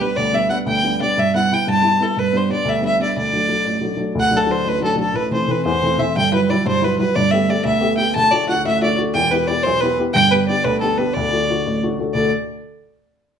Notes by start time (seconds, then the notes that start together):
0.01 G3 B3 D4 B4
0.17 D2 D5
0.33 G3 B3 D4 E5
0.50 G3 B3 D4 F#5
0.66 D2 G5
0.83 G3 B3 D4
1.01 G3 B3 D4 D5
1.17 G2 E5
1.34 G3 B3 E4 F#5
1.51 G3 B3 E4 G5
1.67 G2 A5
1.82 G3 B3 E4
2.00 G3 B3 E4 A4
2.17 G2 B4
2.33 G3 B3 D4
2.37 C5
2.49 G3 B3 D4 D5
2.65 D2
2.69 E5
2.81 G3 B3 D4
2.85 E5
2.99 G3 B3 D4 D5
3.16 D2 D5
3.33 F#3 A3 D4
3.49 F#3 A3 D4
3.65 A1
3.81 F#3 A3 D4
3.97 F#3 A3 D4
4.15 D1 D2
4.20 F#5
4.31 F#3 A3 D4
4.37 A4
4.47 F#3 A3 D4
4.51 C5
4.65 A1 B4
4.81 F#3 A3 D4 A4
4.96 F#3 A3 D4 A4
5.13 A1 A2 B4
5.31 E3 A3 C4 C5
5.48 E3 A3 C4 B4
5.65 E2 C5
5.83 E3 A3 C4
5.98 E3 A3 C4 E5
6.16 G1 G2 G5
6.32 F#3 G3 E4 B4
6.50 F#3 G3 E4 D5
6.66 G2 C5
6.82 F#3 G3 E4 B4
6.99 F#3 G3 E4 B4
7.15 G1 G2 D5
7.31 A3 B3 G4 E5
7.48 A3 B3 G4 D5
7.65 D2 E5
7.80 A3 B3 G4
7.97 A3 B3 G4 G5
8.16 D1 D2 A5
8.31 A3 D4 F#4 D5
8.49 A3 D4 F#4 F#5
8.65 A1 E5
8.81 A3 D4 F#4 D5
8.98 A3 D4 F#4
9.14 E1 E2 G5
9.31 B3 E4 G4 B4
9.48 B3 E4 G4 D5
9.63 B1 C5
9.80 B3 E4 G4 B4
9.99 B3 E4 G4
10.13 G1 G2 G5
10.31 B3 D4 G4 B4
10.48 B3 D4 G4 D5
10.64 D2 B4
10.81 B3 D4 G4 A4
10.98 B3 D4 G4 B4
11.14 D1 D2 D5
11.33 A3 D4 F#4
11.50 A3 D4 F#4
11.66 A1
11.83 A3 D4 F#4
12.00 A3 D4 F#4
12.14 D2 A2 D3 A3 F#4 A4 D5